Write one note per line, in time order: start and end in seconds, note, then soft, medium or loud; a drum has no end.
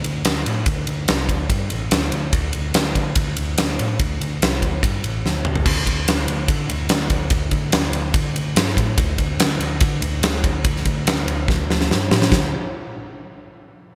0.04 0.21 D2 medium
0.04 ride medium
0.25 0.42 D2 medium
0.25 snare loud
0.25 ride loud
0.46 0.63 A2 medium
0.46 ride medium
0.66 0.83 D2 medium
0.66 kick loud
0.66 ride medium
0.87 1.04 D2 medium
0.87 ride medium
1.08 1.25 C2 medium
1.08 snare loud
1.08 ride medium
1.29 1.46 D2 medium
1.29 kick medium
1.29 ride medium
1.50 1.66 G2 medium
1.50 kick loud
1.50 ride medium
1.70 1.88 A1 medium
1.70 ride medium
1.91 2.08 D2 medium
1.91 snare loud
1.91 ride medium
2.12 2.29 D2 medium
2.12 ride medium
2.33 2.50 D2 medium
2.33 kick loud
2.33 ride medium
2.53 2.71 D2 medium
2.53 ride medium
2.74 2.92 D2 medium
2.74 snare loud
2.74 ride loud
2.95 3.12 D2 medium
2.95 kick medium
2.95 ride medium
3.15 3.33 D2 medium
3.15 kick loud
3.15 ride medium
3.37 3.54 D2 medium
3.37 ride medium
3.58 3.75 D2 medium
3.58 snare loud
3.58 ride loud
3.79 3.96 A2 medium
3.79 ride medium
3.99 4.16 D2 medium
3.99 kick loud
3.99 ride medium
4.21 4.37 D2 medium
4.21 ride medium
4.42 4.58 C2 medium
4.42 snare loud
4.42 ride medium
4.62 4.79 D2 medium
4.62 kick medium
4.62 ride medium
4.83 4.99 G2 medium
4.83 kick loud
4.83 ride medium
5.04 5.21 A1 medium
5.04 ride medium
5.25 5.41 D2 medium
5.25 snare medium
5.45 5.62 D2 medium
5.45 mid tom medium
5.55 floor tom medium
5.66 5.86 D2 medium
5.66 kick loud
5.66 crash loud
5.86 6.06 D2 medium
5.86 kick medium
5.86 ride medium
6.08 6.27 D2 medium
6.08 snare loud
6.08 ride loud
6.28 6.48 D2 medium
6.28 ride medium
6.48 6.69 D3 medium
6.48 kick loud
6.48 ride medium
6.69 6.89 D2 medium
6.69 ride medium
6.89 7.10 D2 medium
6.89 snare loud
6.89 ride medium
7.10 7.30 D2 medium
7.10 kick medium
7.10 ride medium
7.30 7.51 D2 medium
7.30 kick loud
7.30 ride medium
7.51 7.72 D2 medium
7.51 kick medium
7.51 ride medium
7.72 7.92 D2 medium
7.72 snare loud
7.72 ride medium
7.93 8.13 D2 medium
7.93 ride medium
8.14 8.34 D2 medium
8.14 kick loud
8.14 ride medium
8.35 8.55 D2 medium
8.35 ride medium
8.56 8.76 G2 medium
8.56 snare loud
8.56 ride medium
8.68 snare soft
8.77 8.97 A2 medium
8.77 kick medium
8.77 ride medium
8.97 9.18 D2 medium
8.97 kick loud
8.97 ride medium
9.18 9.39 D2 medium
9.18 kick medium
9.18 ride medium
9.39 9.59 D2 medium
9.39 snare loud
9.39 ride loud
9.60 9.80 D2 medium
9.60 ride medium
9.80 10.00 D3 medium
9.80 kick loud
9.80 ride loud
10.01 10.22 D2 medium
10.01 ride medium
10.23 10.43 D2 medium
10.23 snare loud
10.23 ride loud
10.44 10.64 D2 medium
10.44 kick medium
10.44 ride medium
10.65 10.85 D2 medium
10.65 kick loud
10.65 ride loud
10.76 snare soft
10.85 11.05 D2 medium
10.85 kick medium
10.85 ride medium
11.06 11.26 D2 medium
11.06 snare loud
11.06 ride loud
11.28 11.47 D2 medium
11.28 ride medium
11.48 11.68 D2 medium
11.48 kick loud
11.48 snare medium
11.69 11.89 D2 medium
11.69 snare medium
11.81 snare medium
11.90 12.10 G2 medium
11.90 snare medium
12.11 12.31 A2 medium
12.11 snare loud
12.22 snare medium
12.32 12.51 D2 medium
12.32 kick loud
12.32 snare loud